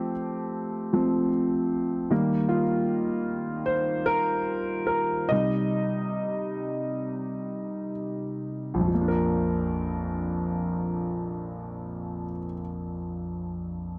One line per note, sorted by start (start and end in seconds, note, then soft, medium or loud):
0.00 0.11 F3 soft
0.00 0.12 A3 soft
0.00 0.12 C4 soft
0.00 2.12 G4 medium
0.93 1.28 F3 soft
0.93 1.29 A3 soft
0.93 1.29 C4 soft
2.10 2.63 D#3 soft
2.10 2.63 G3 soft
2.10 2.63 A#3 medium
2.49 3.71 F4 medium
3.66 4.08 C5 medium
4.06 4.85 A#4 medium
4.87 5.31 A#4 medium
5.29 8.87 C3 soft
5.29 8.87 G3 soft
5.29 8.87 D#4 soft
5.29 7.90 D#5 medium
8.74 12.25 A#1 soft
8.80 12.32 F2 soft
8.88 12.39 F3 soft
8.94 12.45 A#3 soft
9.01 12.52 D4 soft
9.08 12.59 A#4 soft